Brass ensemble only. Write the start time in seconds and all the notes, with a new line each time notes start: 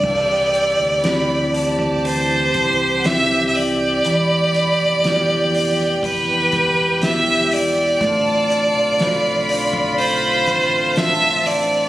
0.04 E3 G3 C4 G4
4.05 E3 B3
8.00 D3 A3 C4 F4